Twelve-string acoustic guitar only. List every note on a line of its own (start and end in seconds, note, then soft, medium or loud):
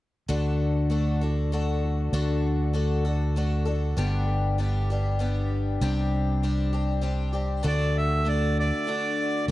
0.28 2.13 D3 medium
0.28 0.88 A3 medium
0.28 0.90 D4 medium
0.28 0.90 F#4 medium
0.28 0.90 A4 medium
0.90 1.21 A3 medium
0.90 1.21 D4 medium
0.90 1.22 F#4 medium
0.90 1.20 A4 medium
1.21 1.52 D4 soft
1.21 1.52 F#4 soft
1.21 1.52 A4 soft
1.52 2.12 A3 medium
1.52 2.13 D4 medium
1.52 2.13 F#4 medium
1.52 2.13 A4 medium
2.13 2.74 D3 medium
2.13 2.72 A3 medium
2.13 2.74 D4 medium
2.13 2.73 F#4 medium
2.13 2.74 A4 medium
2.73 3.05 A3 medium
2.73 3.05 D4 medium
2.73 3.05 F#4 medium
2.73 3.03 A4 medium
3.05 3.36 D4 soft
3.05 3.36 F#4 soft
3.05 3.36 A4 soft
3.36 3.67 A3 medium
3.36 3.67 D4 medium
3.36 3.66 F#4 medium
3.36 3.64 A4 medium
3.65 3.97 D4 soft
3.65 3.97 F#4 soft
3.65 3.97 A4 soft
3.97 4.58 G2 medium
3.97 4.59 D3 medium
3.97 4.58 G3 medium
3.97 4.58 B3 medium
3.97 4.59 D4 medium
3.97 4.60 G4 medium
4.58 4.89 G3 medium
4.58 4.89 B3 medium
4.58 4.90 D4 medium
4.58 4.89 G4 medium
4.90 5.18 G3 soft
4.90 5.19 B3 soft
4.90 5.20 D4 soft
4.90 5.20 G4 soft
5.19 5.80 G3 medium
5.19 5.81 B3 medium
5.19 5.82 D4 medium
5.19 5.82 G4 medium
5.81 6.42 C3 medium
5.81 6.42 G3 medium
5.81 6.42 C4 medium
5.81 6.43 D4 medium
5.81 6.43 G4 medium
6.43 6.73 G3 medium
6.43 6.73 C4 medium
6.43 6.73 D4 medium
6.43 6.72 G4 medium
6.73 7.01 C4 soft
6.73 7.02 D4 soft
6.73 7.02 G4 soft
7.01 7.33 G3 medium
7.01 7.33 C4 medium
7.01 7.32 D4 medium
7.01 7.32 G4 medium
7.33 7.64 C4 soft
7.33 7.63 D4 soft
7.33 7.64 G4 soft
7.63 9.48 D3 medium
7.63 8.24 A3 medium
7.63 8.26 D4 medium
7.63 8.25 F#4 medium
7.63 8.26 A4 medium
8.25 8.86 A3 soft
8.25 8.87 D4 medium
8.25 8.87 F#4 medium
8.25 8.88 A4 medium
8.87 9.47 A3 medium
8.87 9.49 D4 medium
8.87 9.48 F#4 medium
8.87 9.48 A4 medium
9.48 9.51 A3 medium